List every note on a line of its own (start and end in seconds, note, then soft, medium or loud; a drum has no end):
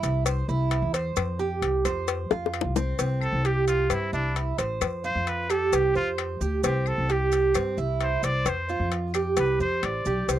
0.00 0.46 C2 loud
0.00 0.24 E4 medium
0.00 cowbell medium
0.00 maracas medium
0.26 0.48 C5 medium
0.26 cowbell loud
0.26 claves medium
0.26 maracas loud
0.48 0.81 C2 medium
0.48 0.93 E4 medium
0.48 maracas soft
0.71 cowbell medium
0.71 maracas soft
0.82 1.15 E2 loud
0.94 1.38 C5 medium
0.94 cowbell medium
0.94 maracas medium
1.16 1.60 F2 loud
1.16 cowbell loud
1.16 claves medium
1.16 maracas loud
1.39 1.84 G4 medium
1.39 maracas soft
1.62 1.84 C2 medium
1.62 cowbell medium
1.62 maracas soft
1.85 2.28 F2 loud
1.85 2.29 C5 medium
1.85 cowbell medium
1.85 claves medium
1.85 maracas medium
2.08 cowbell loud
2.08 maracas medium
2.30 2.63 F2 medium
2.30 2.75 F4 medium
2.30 high bongo loud
2.30 maracas soft
2.46 high bongo medium
2.54 cowbell medium
2.54 claves medium
2.54 maracas soft
2.61 2.97 C2 medium
2.61 low bongo medium
2.76 2.98 C4 medium
2.76 low bongo loud
2.76 maracas medium
2.99 3.31 C2 medium
2.99 3.43 C4 medium
2.99 cowbell loud
2.99 maracas medium
3.21 3.48 A4 medium
3.21 claves medium
3.21 maracas soft
3.32 3.87 C2 loud
3.45 3.89 G4 medium
3.45 3.67 G4 medium
3.45 cowbell medium
3.45 maracas soft
3.68 3.94 F4 medium
3.68 cowbell medium
3.68 maracas medium
3.90 4.12 G2 medium
3.90 4.12 C4 medium
3.90 4.13 E4 medium
3.90 cowbell loud
3.90 claves medium
3.90 maracas medium
4.12 4.56 C2 medium
4.12 4.34 D4 medium
4.12 4.57 E4 medium
4.12 maracas soft
4.36 cowbell medium
4.36 maracas soft
4.58 4.80 A1 medium
4.58 5.03 C5 medium
4.58 cowbell medium
4.58 maracas medium
4.81 5.14 F2 medium
4.81 cowbell loud
4.81 claves medium
4.81 maracas medium
5.04 5.48 F4 medium
5.04 5.30 C5 loud
5.04 maracas soft
5.15 5.69 F2 medium
5.27 5.53 B4 medium
5.27 cowbell medium
5.27 maracas soft
5.50 5.94 G4 medium
5.50 5.76 A4 medium
5.50 cowbell medium
5.50 claves medium
5.50 maracas medium
5.72 5.94 C2 medium
5.72 5.96 G4 medium
5.72 cowbell loud
5.72 maracas loud
5.95 6.39 F2 medium
5.95 6.10 F4 loud
5.95 6.39 C5 medium
5.95 maracas soft
6.18 cowbell medium
6.18 claves medium
6.18 maracas soft
6.41 6.62 D2 medium
6.41 6.63 G4 medium
6.41 maracas medium
6.63 6.96 C2 medium
6.63 7.08 C4 medium
6.63 6.89 G4 medium
6.63 cowbell loud
6.63 maracas loud
6.86 7.13 A4 medium
6.86 claves medium
6.86 maracas soft
6.98 7.52 C2 loud
7.09 7.54 G4 medium
7.09 7.56 G4 medium
7.09 cowbell medium
7.09 maracas soft
7.32 cowbell medium
7.32 maracas medium
7.54 7.76 G2 medium
7.54 7.77 C4 medium
7.54 cowbell loud
7.54 claves medium
7.54 maracas medium
7.77 8.21 C2 medium
7.77 8.22 E4 medium
7.77 maracas soft
8.00 8.26 C5 medium
8.00 cowbell medium
8.00 maracas soft
8.23 8.45 C2 medium
8.23 8.68 C5 medium
8.23 8.50 D5 loud
8.23 cowbell medium
8.23 maracas medium
8.45 8.78 F2 medium
8.45 8.93 C5 medium
8.45 cowbell loud
8.45 claves medium
8.45 maracas loud
8.69 9.13 F4 medium
8.69 maracas soft
8.80 9.34 F2 loud
8.92 cowbell medium
8.92 maracas soft
9.14 9.59 G4 medium
9.14 cowbell medium
9.14 claves medium
9.14 maracas medium
9.37 9.59 C2 medium
9.37 9.60 B4 medium
9.37 cowbell loud
9.37 maracas medium
9.60 9.82 F2 medium
9.60 10.05 C5 medium
9.60 9.87 C5 medium
9.60 maracas soft
9.82 10.03 A1 medium
9.82 10.30 D5 medium
9.82 cowbell medium
9.82 claves medium
9.82 maracas soft
10.05 10.26 B1 medium
10.05 10.28 G4 medium
10.05 maracas medium
10.28 10.39 C2 medium
10.28 10.39 C4 medium
10.28 cowbell loud
10.28 maracas medium